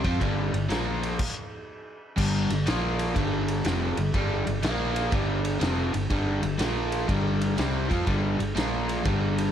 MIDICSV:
0, 0, Header, 1, 4, 480
1, 0, Start_track
1, 0, Tempo, 490998
1, 209, Time_signature, 4, 2, 24, 8
1, 9304, End_track
2, 0, Start_track
2, 0, Title_t, "Overdriven electric guitar"
2, 0, Program_c, 0, 29
2, 42, Note_on_c, 0, 53, 110
2, 44, Note_on_c, 0, 60, 111
2, 47, Note_on_c, 0, 65, 115
2, 194, Note_on_c, 0, 43, 100
2, 200, Note_off_c, 0, 53, 0
2, 201, Note_off_c, 0, 60, 0
2, 203, Note_off_c, 0, 65, 0
2, 204, Note_on_c, 0, 50, 101
2, 205, Note_on_c, 0, 55, 104
2, 512, Note_off_c, 0, 43, 0
2, 515, Note_off_c, 0, 50, 0
2, 518, Note_off_c, 0, 55, 0
2, 524, Note_on_c, 0, 43, 67
2, 527, Note_on_c, 0, 50, 79
2, 655, Note_off_c, 0, 43, 0
2, 657, Note_off_c, 0, 50, 0
2, 675, Note_on_c, 0, 46, 93
2, 679, Note_on_c, 0, 53, 103
2, 682, Note_on_c, 0, 58, 103
2, 1159, Note_off_c, 0, 46, 0
2, 1161, Note_off_c, 0, 53, 0
2, 1162, Note_off_c, 0, 58, 0
2, 2116, Note_on_c, 0, 43, 102
2, 2121, Note_on_c, 0, 50, 98
2, 2126, Note_on_c, 0, 55, 114
2, 2435, Note_off_c, 0, 43, 0
2, 2437, Note_off_c, 0, 50, 0
2, 2440, Note_off_c, 0, 55, 0
2, 2449, Note_on_c, 0, 43, 64
2, 2449, Note_on_c, 0, 50, 72
2, 2579, Note_off_c, 0, 43, 0
2, 2579, Note_off_c, 0, 50, 0
2, 2605, Note_on_c, 0, 53, 111
2, 2606, Note_on_c, 0, 46, 97
2, 2613, Note_on_c, 0, 58, 113
2, 3077, Note_off_c, 0, 46, 0
2, 3077, Note_on_c, 0, 43, 98
2, 3080, Note_on_c, 0, 50, 99
2, 3084, Note_off_c, 0, 53, 0
2, 3089, Note_off_c, 0, 58, 0
2, 3091, Note_on_c, 0, 55, 108
2, 3560, Note_off_c, 0, 43, 0
2, 3562, Note_off_c, 0, 50, 0
2, 3564, Note_on_c, 0, 41, 99
2, 3567, Note_off_c, 0, 55, 0
2, 3570, Note_on_c, 0, 48, 103
2, 3574, Note_on_c, 0, 53, 111
2, 3879, Note_off_c, 0, 41, 0
2, 3881, Note_off_c, 0, 48, 0
2, 3884, Note_off_c, 0, 53, 0
2, 3885, Note_on_c, 0, 43, 66
2, 3888, Note_on_c, 0, 50, 79
2, 4017, Note_off_c, 0, 43, 0
2, 4019, Note_off_c, 0, 50, 0
2, 4043, Note_on_c, 0, 43, 104
2, 4051, Note_on_c, 0, 50, 96
2, 4056, Note_on_c, 0, 55, 109
2, 4351, Note_off_c, 0, 43, 0
2, 4356, Note_off_c, 0, 50, 0
2, 4363, Note_on_c, 0, 43, 64
2, 4365, Note_off_c, 0, 55, 0
2, 4368, Note_on_c, 0, 50, 80
2, 4496, Note_off_c, 0, 43, 0
2, 4519, Note_off_c, 0, 50, 0
2, 4519, Note_on_c, 0, 46, 102
2, 4525, Note_on_c, 0, 53, 99
2, 4531, Note_on_c, 0, 58, 108
2, 5000, Note_off_c, 0, 46, 0
2, 5002, Note_on_c, 0, 43, 99
2, 5004, Note_off_c, 0, 53, 0
2, 5004, Note_on_c, 0, 50, 96
2, 5007, Note_off_c, 0, 58, 0
2, 5008, Note_on_c, 0, 55, 104
2, 5471, Note_off_c, 0, 50, 0
2, 5472, Note_off_c, 0, 43, 0
2, 5475, Note_off_c, 0, 55, 0
2, 5475, Note_on_c, 0, 48, 100
2, 5476, Note_on_c, 0, 41, 89
2, 5479, Note_on_c, 0, 53, 114
2, 5794, Note_off_c, 0, 41, 0
2, 5794, Note_off_c, 0, 48, 0
2, 5796, Note_off_c, 0, 53, 0
2, 5800, Note_on_c, 0, 43, 67
2, 5800, Note_on_c, 0, 50, 85
2, 5934, Note_off_c, 0, 43, 0
2, 5934, Note_off_c, 0, 50, 0
2, 5962, Note_on_c, 0, 43, 102
2, 5966, Note_on_c, 0, 50, 112
2, 5970, Note_on_c, 0, 55, 116
2, 6271, Note_off_c, 0, 50, 0
2, 6274, Note_off_c, 0, 43, 0
2, 6281, Note_off_c, 0, 55, 0
2, 6283, Note_on_c, 0, 50, 73
2, 6285, Note_on_c, 0, 43, 72
2, 6415, Note_off_c, 0, 50, 0
2, 6417, Note_off_c, 0, 43, 0
2, 6431, Note_on_c, 0, 46, 105
2, 6436, Note_on_c, 0, 53, 105
2, 6437, Note_on_c, 0, 58, 114
2, 6916, Note_off_c, 0, 46, 0
2, 6918, Note_on_c, 0, 43, 97
2, 6919, Note_off_c, 0, 53, 0
2, 6919, Note_off_c, 0, 58, 0
2, 6922, Note_on_c, 0, 50, 106
2, 6928, Note_on_c, 0, 55, 103
2, 7399, Note_off_c, 0, 43, 0
2, 7401, Note_off_c, 0, 50, 0
2, 7401, Note_off_c, 0, 55, 0
2, 7407, Note_on_c, 0, 48, 98
2, 7413, Note_on_c, 0, 55, 109
2, 7415, Note_on_c, 0, 60, 102
2, 7703, Note_off_c, 0, 60, 0
2, 7710, Note_off_c, 0, 48, 0
2, 7711, Note_off_c, 0, 55, 0
2, 7714, Note_on_c, 0, 53, 97
2, 7715, Note_on_c, 0, 60, 104
2, 7725, Note_on_c, 0, 65, 109
2, 7877, Note_off_c, 0, 53, 0
2, 7878, Note_off_c, 0, 60, 0
2, 7882, Note_on_c, 0, 43, 86
2, 7883, Note_off_c, 0, 65, 0
2, 7884, Note_on_c, 0, 50, 104
2, 7886, Note_on_c, 0, 55, 106
2, 8190, Note_off_c, 0, 43, 0
2, 8197, Note_off_c, 0, 50, 0
2, 8198, Note_off_c, 0, 55, 0
2, 8202, Note_on_c, 0, 43, 62
2, 8208, Note_on_c, 0, 50, 65
2, 8334, Note_off_c, 0, 43, 0
2, 8337, Note_off_c, 0, 50, 0
2, 8363, Note_on_c, 0, 46, 107
2, 8365, Note_on_c, 0, 53, 116
2, 8373, Note_on_c, 0, 58, 92
2, 8838, Note_on_c, 0, 43, 105
2, 8842, Note_off_c, 0, 46, 0
2, 8842, Note_off_c, 0, 53, 0
2, 8846, Note_off_c, 0, 58, 0
2, 8848, Note_on_c, 0, 50, 111
2, 8850, Note_on_c, 0, 55, 111
2, 9304, Note_off_c, 0, 43, 0
2, 9304, Note_off_c, 0, 50, 0
2, 9304, Note_off_c, 0, 55, 0
2, 9304, End_track
3, 0, Start_track
3, 0, Title_t, "Fingered electric bass"
3, 0, Program_c, 1, 33
3, 44, Note_on_c, 1, 41, 93
3, 196, Note_off_c, 1, 41, 0
3, 209, Note_on_c, 1, 31, 88
3, 507, Note_off_c, 1, 31, 0
3, 523, Note_on_c, 1, 31, 74
3, 676, Note_off_c, 1, 31, 0
3, 688, Note_on_c, 1, 34, 98
3, 1136, Note_off_c, 1, 34, 0
3, 2130, Note_on_c, 1, 31, 96
3, 2429, Note_off_c, 1, 31, 0
3, 2441, Note_on_c, 1, 31, 80
3, 2596, Note_off_c, 1, 31, 0
3, 2613, Note_on_c, 1, 34, 91
3, 3060, Note_off_c, 1, 34, 0
3, 3092, Note_on_c, 1, 31, 89
3, 3539, Note_off_c, 1, 31, 0
3, 3572, Note_on_c, 1, 29, 111
3, 3870, Note_off_c, 1, 29, 0
3, 3884, Note_on_c, 1, 31, 78
3, 4037, Note_off_c, 1, 31, 0
3, 4051, Note_on_c, 1, 31, 96
3, 4350, Note_off_c, 1, 31, 0
3, 4370, Note_on_c, 1, 31, 80
3, 4520, Note_off_c, 1, 31, 0
3, 4529, Note_on_c, 1, 34, 101
3, 4977, Note_off_c, 1, 34, 0
3, 5010, Note_on_c, 1, 31, 101
3, 5457, Note_off_c, 1, 31, 0
3, 5486, Note_on_c, 1, 29, 111
3, 5786, Note_off_c, 1, 29, 0
3, 5812, Note_on_c, 1, 31, 82
3, 5961, Note_off_c, 1, 31, 0
3, 5973, Note_on_c, 1, 31, 102
3, 6270, Note_off_c, 1, 31, 0
3, 6286, Note_on_c, 1, 31, 81
3, 6438, Note_off_c, 1, 31, 0
3, 6447, Note_on_c, 1, 34, 96
3, 6895, Note_off_c, 1, 34, 0
3, 6932, Note_on_c, 1, 31, 104
3, 7378, Note_off_c, 1, 31, 0
3, 7412, Note_on_c, 1, 36, 116
3, 7709, Note_off_c, 1, 36, 0
3, 7736, Note_on_c, 1, 41, 94
3, 7883, Note_off_c, 1, 41, 0
3, 7894, Note_on_c, 1, 31, 107
3, 8189, Note_off_c, 1, 31, 0
3, 8207, Note_on_c, 1, 31, 82
3, 8358, Note_off_c, 1, 31, 0
3, 8370, Note_on_c, 1, 34, 97
3, 8816, Note_off_c, 1, 34, 0
3, 8852, Note_on_c, 1, 31, 106
3, 9298, Note_off_c, 1, 31, 0
3, 9304, End_track
4, 0, Start_track
4, 0, Title_t, "Drums"
4, 43, Note_on_c, 9, 51, 66
4, 44, Note_on_c, 9, 36, 101
4, 141, Note_off_c, 9, 51, 0
4, 142, Note_off_c, 9, 36, 0
4, 207, Note_on_c, 9, 36, 100
4, 208, Note_on_c, 9, 51, 90
4, 304, Note_off_c, 9, 36, 0
4, 306, Note_off_c, 9, 51, 0
4, 528, Note_on_c, 9, 51, 61
4, 626, Note_off_c, 9, 51, 0
4, 686, Note_on_c, 9, 51, 94
4, 702, Note_on_c, 9, 38, 114
4, 784, Note_off_c, 9, 51, 0
4, 800, Note_off_c, 9, 38, 0
4, 1010, Note_on_c, 9, 51, 72
4, 1108, Note_off_c, 9, 51, 0
4, 1164, Note_on_c, 9, 49, 122
4, 1168, Note_on_c, 9, 36, 118
4, 1262, Note_off_c, 9, 49, 0
4, 1266, Note_off_c, 9, 36, 0
4, 2128, Note_on_c, 9, 36, 93
4, 2129, Note_on_c, 9, 49, 120
4, 2226, Note_off_c, 9, 36, 0
4, 2226, Note_off_c, 9, 49, 0
4, 2447, Note_on_c, 9, 51, 70
4, 2545, Note_off_c, 9, 51, 0
4, 2607, Note_on_c, 9, 51, 108
4, 2623, Note_on_c, 9, 38, 117
4, 2705, Note_off_c, 9, 51, 0
4, 2721, Note_off_c, 9, 38, 0
4, 2926, Note_on_c, 9, 51, 86
4, 3023, Note_off_c, 9, 51, 0
4, 3088, Note_on_c, 9, 36, 116
4, 3089, Note_on_c, 9, 51, 112
4, 3186, Note_off_c, 9, 36, 0
4, 3186, Note_off_c, 9, 51, 0
4, 3405, Note_on_c, 9, 51, 77
4, 3503, Note_off_c, 9, 51, 0
4, 3564, Note_on_c, 9, 51, 98
4, 3580, Note_on_c, 9, 38, 110
4, 3662, Note_off_c, 9, 51, 0
4, 3677, Note_off_c, 9, 38, 0
4, 3883, Note_on_c, 9, 51, 75
4, 3981, Note_off_c, 9, 51, 0
4, 4047, Note_on_c, 9, 51, 92
4, 4048, Note_on_c, 9, 36, 103
4, 4145, Note_off_c, 9, 51, 0
4, 4146, Note_off_c, 9, 36, 0
4, 4368, Note_on_c, 9, 51, 66
4, 4466, Note_off_c, 9, 51, 0
4, 4526, Note_on_c, 9, 51, 97
4, 4542, Note_on_c, 9, 38, 114
4, 4624, Note_off_c, 9, 51, 0
4, 4639, Note_off_c, 9, 38, 0
4, 4849, Note_on_c, 9, 51, 82
4, 4947, Note_off_c, 9, 51, 0
4, 5006, Note_on_c, 9, 51, 114
4, 5009, Note_on_c, 9, 36, 121
4, 5104, Note_off_c, 9, 51, 0
4, 5107, Note_off_c, 9, 36, 0
4, 5325, Note_on_c, 9, 51, 86
4, 5423, Note_off_c, 9, 51, 0
4, 5486, Note_on_c, 9, 51, 112
4, 5502, Note_on_c, 9, 38, 109
4, 5584, Note_off_c, 9, 51, 0
4, 5599, Note_off_c, 9, 38, 0
4, 5807, Note_on_c, 9, 51, 81
4, 5905, Note_off_c, 9, 51, 0
4, 5966, Note_on_c, 9, 51, 99
4, 5969, Note_on_c, 9, 36, 104
4, 6063, Note_off_c, 9, 51, 0
4, 6066, Note_off_c, 9, 36, 0
4, 6284, Note_on_c, 9, 51, 76
4, 6382, Note_off_c, 9, 51, 0
4, 6444, Note_on_c, 9, 51, 109
4, 6459, Note_on_c, 9, 38, 118
4, 6541, Note_off_c, 9, 51, 0
4, 6557, Note_off_c, 9, 38, 0
4, 6766, Note_on_c, 9, 51, 81
4, 6864, Note_off_c, 9, 51, 0
4, 6929, Note_on_c, 9, 51, 112
4, 6930, Note_on_c, 9, 36, 115
4, 7027, Note_off_c, 9, 51, 0
4, 7028, Note_off_c, 9, 36, 0
4, 7249, Note_on_c, 9, 51, 82
4, 7346, Note_off_c, 9, 51, 0
4, 7408, Note_on_c, 9, 51, 101
4, 7424, Note_on_c, 9, 38, 108
4, 7506, Note_off_c, 9, 51, 0
4, 7522, Note_off_c, 9, 38, 0
4, 7732, Note_on_c, 9, 36, 109
4, 7734, Note_on_c, 9, 51, 73
4, 7830, Note_off_c, 9, 36, 0
4, 7832, Note_off_c, 9, 51, 0
4, 7889, Note_on_c, 9, 51, 94
4, 7892, Note_on_c, 9, 36, 100
4, 7987, Note_off_c, 9, 51, 0
4, 7990, Note_off_c, 9, 36, 0
4, 8213, Note_on_c, 9, 51, 68
4, 8311, Note_off_c, 9, 51, 0
4, 8375, Note_on_c, 9, 51, 105
4, 8391, Note_on_c, 9, 38, 121
4, 8473, Note_off_c, 9, 51, 0
4, 8489, Note_off_c, 9, 38, 0
4, 8692, Note_on_c, 9, 51, 77
4, 8790, Note_off_c, 9, 51, 0
4, 8850, Note_on_c, 9, 51, 116
4, 8853, Note_on_c, 9, 36, 120
4, 8948, Note_off_c, 9, 51, 0
4, 8951, Note_off_c, 9, 36, 0
4, 9173, Note_on_c, 9, 51, 85
4, 9271, Note_off_c, 9, 51, 0
4, 9304, End_track
0, 0, End_of_file